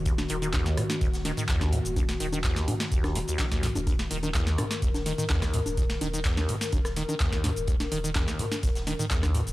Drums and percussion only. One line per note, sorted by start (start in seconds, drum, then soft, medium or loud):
0.05 kick loud
0.05 closed hi-hat medium
0.05 shaker medium
0.18 snare medium
0.18 snare soft
0.18 closed hi-hat soft
0.18 high conga medium
0.18 shaker soft
0.28 closed hi-hat medium
0.28 open hi-hat loud
0.42 closed hi-hat soft
0.42 shaker medium
0.53 kick loud
0.53 snare loud
0.53 clap loud
0.53 closed hi-hat medium
0.53 high conga medium
0.53 shaker medium
0.66 snare medium
0.66 closed hi-hat soft
0.66 shaker soft
0.77 cross-stick medium
0.77 closed hi-hat medium
0.77 mid tom loud
0.77 open hi-hat loud
0.90 snare medium
0.90 closed hi-hat soft
0.90 high conga medium
0.90 shaker medium
1.01 kick loud
1.01 closed hi-hat medium
1.01 shaker medium
1.14 snare medium
1.14 closed hi-hat soft
1.14 shaker soft
1.25 snare soft
1.25 closed hi-hat medium
1.25 open hi-hat loud
1.25 high conga medium
1.37 closed hi-hat soft
1.37 mid tom loud
1.37 shaker medium
1.49 kick loud
1.49 snare loud
1.49 clap loud
1.49 closed hi-hat medium
1.49 shaker medium
1.61 kick medium
1.61 cross-stick medium
1.61 snare medium
1.61 closed hi-hat soft
1.61 high conga medium
1.61 shaker soft
1.72 closed hi-hat medium
1.72 mid tom loud
1.72 open hi-hat loud
1.85 closed hi-hat soft
1.85 shaker medium
1.96 kick loud
1.96 closed hi-hat medium
1.96 closed hi-hat loud
1.96 high conga medium
1.96 shaker medium
2.08 snare soft
2.08 snare medium
2.08 closed hi-hat soft
2.08 shaker soft
2.20 closed hi-hat medium
2.20 open hi-hat loud
2.33 closed hi-hat soft
2.33 high conga medium
2.33 shaker medium
2.44 kick loud
2.44 snare loud
2.44 clap loud
2.44 closed hi-hat medium
2.44 shaker medium
2.56 snare medium
2.56 closed hi-hat soft
2.56 shaker soft
2.68 closed hi-hat medium
2.68 mid tom loud
2.68 open hi-hat loud
2.68 high conga medium
2.80 snare medium
2.80 closed hi-hat soft
2.80 shaker medium
2.92 kick loud
2.92 closed hi-hat medium
2.92 shaker medium
3.04 cross-stick medium
3.04 snare soft
3.04 closed hi-hat soft
3.04 high conga medium
3.04 shaker soft
3.15 snare soft
3.15 closed hi-hat medium
3.15 open hi-hat loud
3.28 closed hi-hat soft
3.28 shaker medium
3.39 kick loud
3.39 snare loud
3.39 clap loud
3.39 closed hi-hat loud
3.39 closed hi-hat medium
3.39 high conga medium
3.39 shaker medium
3.52 kick medium
3.52 snare medium
3.52 closed hi-hat soft
3.52 shaker soft
3.63 snare medium
3.63 closed hi-hat medium
3.63 mid tom medium
3.63 open hi-hat loud
3.75 closed hi-hat soft
3.75 high conga medium
3.75 shaker medium
3.87 kick loud
3.87 closed hi-hat medium
3.87 high conga medium
3.87 shaker medium
3.99 snare soft
3.99 snare medium
3.99 closed hi-hat soft
3.99 shaker soft
4.11 closed hi-hat medium
4.11 open hi-hat loud
4.23 closed hi-hat soft
4.23 high conga medium
4.23 shaker medium
4.34 kick loud
4.34 snare loud
4.34 clap loud
4.34 closed hi-hat medium
4.34 shaker medium
4.47 snare medium
4.47 closed hi-hat soft
4.47 shaker soft
4.58 cross-stick medium
4.58 closed hi-hat medium
4.58 mid tom loud
4.58 open hi-hat loud
4.58 high conga medium
4.71 snare medium
4.71 closed hi-hat soft
4.71 shaker medium
4.82 kick loud
4.82 closed hi-hat medium
4.82 shaker medium
4.94 snare medium
4.94 closed hi-hat soft
4.94 high conga medium
4.94 shaker soft
5.06 snare soft
5.06 closed hi-hat medium
5.06 open hi-hat loud
5.18 closed hi-hat soft
5.18 mid tom medium
5.18 shaker medium
5.29 kick loud
5.29 snare loud
5.29 clap loud
5.29 closed hi-hat medium
5.29 closed hi-hat loud
5.29 high conga medium
5.29 shaker medium
5.42 kick medium
5.42 cross-stick medium
5.42 snare medium
5.42 closed hi-hat soft
5.42 shaker soft
5.54 closed hi-hat medium
5.54 mid tom medium
5.54 open hi-hat loud
5.66 closed hi-hat soft
5.66 high conga medium
5.66 shaker medium
5.77 kick loud
5.77 closed hi-hat medium
5.77 shaker medium
5.89 snare soft
5.89 snare medium
5.89 closed hi-hat soft
5.89 shaker soft
6.01 closed hi-hat medium
6.01 open hi-hat loud
6.01 high conga medium
6.14 closed hi-hat soft
6.14 shaker medium
6.25 kick loud
6.25 snare loud
6.25 clap loud
6.25 closed hi-hat medium
6.25 shaker medium
6.37 snare medium
6.37 closed hi-hat soft
6.37 high conga medium
6.37 shaker soft
6.49 closed hi-hat medium
6.49 mid tom medium
6.49 open hi-hat loud
6.61 snare medium
6.61 closed hi-hat soft
6.61 shaker medium
6.72 kick loud
6.72 closed hi-hat medium
6.72 high conga medium
6.72 shaker medium
6.84 cross-stick medium
6.84 snare soft
6.84 closed hi-hat soft
6.84 shaker soft
6.96 snare soft
6.96 closed hi-hat medium
6.96 open hi-hat loud
7.09 closed hi-hat soft
7.09 high conga medium
7.09 shaker medium
7.20 kick loud
7.20 snare loud
7.20 clap loud
7.20 closed hi-hat medium
7.20 shaker medium
7.32 kick medium
7.32 snare medium
7.32 closed hi-hat soft
7.32 shaker soft
7.44 snare medium
7.44 closed hi-hat medium
7.44 mid tom medium
7.44 open hi-hat loud
7.44 high conga medium
7.56 closed hi-hat soft
7.56 shaker medium
7.67 kick loud
7.67 closed hi-hat medium
7.67 shaker medium
7.80 snare medium
7.80 snare soft
7.80 closed hi-hat soft
7.80 high conga medium
7.80 shaker soft
7.92 closed hi-hat medium
7.92 open hi-hat loud
8.04 closed hi-hat soft
8.04 shaker medium
8.15 kick loud
8.15 snare loud
8.15 clap loud
8.15 closed hi-hat medium
8.15 high conga medium
8.15 shaker medium
8.28 snare medium
8.28 closed hi-hat soft
8.28 shaker soft
8.39 closed hi-hat medium
8.39 mid tom loud
8.39 open hi-hat loud
8.52 snare medium
8.52 closed hi-hat soft
8.52 high conga medium
8.52 shaker medium
8.63 kick loud
8.63 closed hi-hat medium
8.63 shaker medium
8.75 snare medium
8.75 closed hi-hat soft
8.75 shaker soft
8.87 snare soft
8.87 closed hi-hat medium
8.87 open hi-hat loud
8.87 high conga medium
8.99 closed hi-hat soft
8.99 mid tom medium
8.99 shaker medium
9.10 kick loud
9.10 snare loud
9.10 clap loud
9.10 closed hi-hat medium
9.10 shaker medium
9.23 kick medium
9.23 cross-stick medium
9.23 snare medium
9.23 closed hi-hat soft
9.23 high conga medium
9.23 shaker soft
9.35 closed hi-hat medium
9.35 mid tom medium
9.35 open hi-hat loud
9.47 closed hi-hat soft
9.47 shaker medium